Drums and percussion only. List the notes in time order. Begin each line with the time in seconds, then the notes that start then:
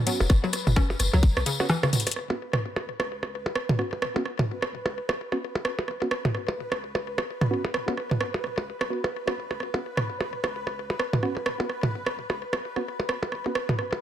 0.06 closed hi-hat, tambourine
0.20 tambourine, percussion blips
0.30 kick, cross-stick, tambourine
0.44 tambourine, percussion blips
0.53 cross-stick, closed hi-hat, tambourine
0.67 mid tom, tambourine, percussion blips
0.76 kick, cross-stick, tambourine
0.90 tambourine, percussion blips
0.99 cross-stick, closed hi-hat, tambourine
1.13 tambourine, percussion blips
1.23 kick, tambourine
1.36 cross-stick, tambourine, percussion blips
1.46 closed hi-hat, tambourine
1.60 cross-stick, tambourine, percussion blips
1.69 cross-stick, tambourine
1.83 cross-stick, tambourine, percussion blips
1.93 closed hi-hat, mid tom, tambourine
2.00 closed hi-hat
2.07 cross-stick, closed hi-hat, percussion blips
2.11 closed hi-hat
2.16 cross-stick
2.30 percussion blips
2.53 cross-stick, mid tom, percussion blips
2.76 cross-stick, percussion blips
3.00 cross-stick, percussion blips
3.23 cross-stick, percussion blips
3.46 percussion blips
3.55 cross-stick
3.69 mid tom, percussion blips
3.79 cross-stick
3.93 percussion blips
4.02 cross-stick
4.16 percussion blips
4.25 cross-stick
4.39 mid tom, percussion blips
4.62 cross-stick, percussion blips
4.86 cross-stick, percussion blips
5.09 cross-stick, percussion blips
5.32 cross-stick, percussion blips
5.55 percussion blips
5.65 cross-stick
5.79 percussion blips
5.88 cross-stick
6.02 percussion blips
6.11 cross-stick
6.25 mid tom, percussion blips
6.35 cross-stick
6.48 percussion blips
6.72 cross-stick, percussion blips
6.95 cross-stick, percussion blips
7.18 cross-stick, percussion blips
7.41 cross-stick, mid tom, percussion blips
7.65 percussion blips
7.74 cross-stick
7.88 percussion blips
7.97 cross-stick
8.11 mid tom, percussion blips
8.21 cross-stick
8.34 percussion blips
8.44 cross-stick
8.58 percussion blips
8.81 cross-stick, percussion blips
9.04 cross-stick, percussion blips
9.28 cross-stick, percussion blips
9.51 cross-stick, percussion blips
9.60 cross-stick
9.74 percussion blips
9.97 cross-stick, mid tom, percussion blips
10.21 cross-stick, percussion blips
10.44 cross-stick, percussion blips
10.67 cross-stick, percussion blips
10.90 percussion blips
10.99 cross-stick
11.13 mid tom, percussion blips
11.23 cross-stick
11.37 percussion blips
11.46 cross-stick
11.60 percussion blips
11.70 cross-stick
11.83 mid tom, percussion blips
12.06 cross-stick, percussion blips
12.30 cross-stick, percussion blips
12.53 cross-stick, percussion blips
12.76 cross-stick, percussion blips
13.00 percussion blips
13.09 cross-stick
13.23 percussion blips
13.32 cross-stick
13.46 percussion blips
13.55 cross-stick
13.69 mid tom, percussion blips
13.79 cross-stick
13.93 percussion blips